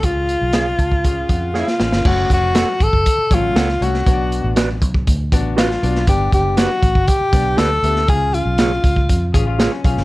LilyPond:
<<
  \new Staff \with { instrumentName = "Clean electric guitar" } { \time 4/4 \key cis \phrygian \tempo 4 = 119 r4 <gis' cis'' eis''>8 r4. <gis' cis'' eis''>8 r8 | \key fis \minor r4 <a' cis'' fis''>8 r4. <a' cis'' fis''>8 r8 | r4 <fis' b' d''>8 r4. <fis' b' d''>8 r8 | r4 <g' b' d''>8 r4. <g' b' d''>8 r8 |
r4 <eis' gis' cis''>8 r4. <eis' gis' cis''>8 r8 | }
  \new Staff \with { instrumentName = "Tenor saxophone" } { \time 4/4 \key cis \phrygian eis'2. eis'4 | \key fis \minor fis'8 fis'4 a'4 eis'4 fis'8~ | fis'4 r2 eis'4 | g'8 g'8 fis'4 g'4 a'4 |
gis'8 eis'2 r4. | }
  \new Staff \with { instrumentName = "Grand piano" } { \time 4/4 \key cis \phrygian << { cis4. a''8 gis''8 fis''8 eis''8 cis''8 | \key fis \minor r1 | b,4. r2 r8 | g4. r2 r8 |
cis4. r2 r8 | } \\ { <cis' eis' gis' eis''>4. r8 <cis' eis' gis' eis''>4 r8 <cis' eis' gis' eis''>8 | <a cis' fis' cis''>4. r4 <fis a cis' cis''>8 r8 <a cis' fis' cis''>8 | <b d' fis' cis'' d''>4. r4 <b d' fis' d''>8 r8 <b d' fis' d''>8 | <b d' g' d''>4. r4 <b d' g' d''>8 r8 <b d' g' e''>8 |
<cis' eis' gis' eis''>4. r4 <cis' eis' gis' eis''>8 r8 <cis' eis' gis' eis''>8 | } >> }
  \new Staff \with { instrumentName = "Clean electric guitar" } { \time 4/4 \key cis \phrygian r1 | \key fis \minor r1 | r1 | r1 |
r2 r8 gis'16 eis'8 cis'8. | }
  \new Staff \with { instrumentName = "Fingered electric bass" } { \clef bass \time 4/4 \key cis \phrygian cis,8. b,,8. cis,4 eis,8. r16 a,,16 g,,16 | \key fis \minor fis,,8 eis,,8. r16 gis,,16 fis,,16 r8 a,,8 cis,8 bis,,8 | b,,8. a,,8. b,,8 d,8 a,,4 b,,8 | g,,8 fis,,8. r16 a,,16 g,,16 r8 b,,8 d,8 d,8 |
cis,8. b,,8. cis,8 eis,8 a,,8. r16 b,,16 g,,16 | }
  \new DrumStaff \with { instrumentName = "Drums" } \drummode { \time 4/4 <hh bd>8 hh8 <hh sn>8 <hh bd>16 bd16 <hh bd>8 <hh bd>8 sn16 sn16 sn16 sn16 | <cymc bd>8 <hh bd>8 <hh sn>8 <hh bd>16 bd16 <hh bd>8 <hh bd>8 <hh sn>16 sn16 hh16 sn16 | <hh bd>8 hh8 <hh sn>8 <hh bd>16 bd16 <hh bd>8 <hh bd>8 <hh sn>16 sn16 hh16 sn16 | <hh bd>8 <hh bd>8 <hh sn>8 <hh bd>16 bd16 <hh bd>8 <hh bd>8 <hh sn>8 hh16 sn16 |
<hh bd>8 hh8 <hh sn>8 <hh bd>16 bd16 <hh bd>8 <hh bd>8 <hh sn>8 <hh bd>16 sn16 | }
>>